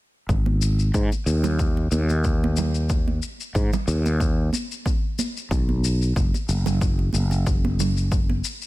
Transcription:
0.29 G#1, kick, shaker
0.46 high conga
0.62 shaker
0.79 shaker
0.94 G#2, kick, shaker
1.12 muted conga, shaker
1.26 D#2, high conga, shaker
1.44 muted conga, low conga, shaker
1.59 kick, shaker
1.77 muted conga
1.92 D#2, high conga, shaker
2.09 muted conga, shaker
2.24 kick, shaker
2.44 high conga
2.57 low conga, shaker
2.75 shaker
2.90 kick, shaker
3.08 high conga
3.22 shaker
3.40 shaker
3.55 G#2, kick, shaker
3.73 muted conga, low conga, shaker
3.88 D#2, shaker
4.06 muted conga, shaker
4.20 kick, shaker
4.53 high conga, shaker
4.71 shaker
4.86 kick, high conga, shaker
5.19 high conga, shaker
5.37 shaker
5.51 B1, kick, shaker
5.69 high conga
5.84 shaker
6.02 shaker
6.16 F#1, kick, shaker
6.34 muted conga, shaker
6.49 F#1, high conga, shaker
6.66 muted conga, low conga, shaker
6.81 kick, shaker
6.99 muted conga
7.13 F#1, high conga, shaker
7.31 muted conga, shaker
7.47 kick, shaker
7.65 high conga
7.80 low conga, shaker
7.97 shaker
8.12 kick, shaker
8.29 high conga
8.44 shaker
8.62 shaker

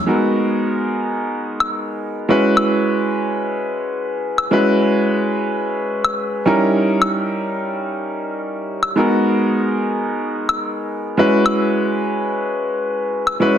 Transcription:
0.06 G#3 B3 D#4 F#4 A#4
1.60 high woodblock
2.29 G#3 C#4 E4 F#4 B4
2.57 high woodblock
4.38 high woodblock
4.51 G#3 C#4 E4 F#4 B4
6.04 high woodblock
6.46 G3 C#4 D#4 E4 A#4
7.02 high woodblock
8.83 high woodblock
8.96 G#3 B3 D#4 F#4 A#4
10.49 high woodblock
11.17 G#3 C#4 E4 F#4 B4
11.46 high woodblock
13.27 high woodblock
13.40 G#3 C#4 E4 F#4 B4

